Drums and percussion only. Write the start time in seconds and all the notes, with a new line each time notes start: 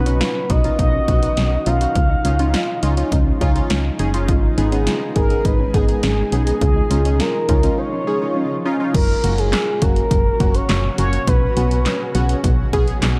0.06 closed hi-hat
0.21 snare, closed hi-hat
0.50 kick, closed hi-hat
0.64 closed hi-hat
0.79 kick, closed hi-hat
1.08 kick, closed hi-hat
1.23 closed hi-hat
1.37 snare, closed hi-hat
1.66 closed hi-hat
1.81 closed hi-hat
1.95 kick, closed hi-hat
2.25 closed hi-hat
2.39 closed hi-hat
2.54 snare, closed hi-hat
2.83 closed hi-hat
2.97 closed hi-hat
3.12 kick, closed hi-hat
3.41 kick, closed hi-hat
3.56 closed hi-hat
3.70 snare, closed hi-hat
3.99 closed hi-hat
4.14 closed hi-hat
4.28 kick, closed hi-hat
4.58 closed hi-hat
4.72 closed hi-hat
4.87 snare, closed hi-hat
5.16 kick, closed hi-hat
5.30 closed hi-hat
5.45 kick, closed hi-hat
5.74 kick, closed hi-hat
5.89 closed hi-hat
6.03 snare, closed hi-hat
6.32 closed hi-hat
6.47 closed hi-hat
6.61 kick, closed hi-hat
6.91 closed hi-hat
7.05 closed hi-hat
7.20 snare, closed hi-hat
7.49 kick, closed hi-hat
7.63 closed hi-hat
8.94 kick, closed hi-hat, crash
9.24 closed hi-hat
9.38 closed hi-hat
9.53 snare, clap, closed hi-hat
9.82 kick, closed hi-hat
9.96 closed hi-hat
10.11 kick, closed hi-hat
10.40 kick, closed hi-hat
10.55 closed hi-hat
10.69 snare, clap, closed hi-hat
10.98 closed hi-hat
11.13 closed hi-hat
11.27 kick, closed hi-hat
11.57 closed hi-hat
11.71 closed hi-hat
11.86 snare, clap, closed hi-hat
12.15 closed hi-hat
12.29 closed hi-hat
12.44 kick, closed hi-hat
12.73 kick, closed hi-hat
12.88 closed hi-hat
13.02 snare, clap, closed hi-hat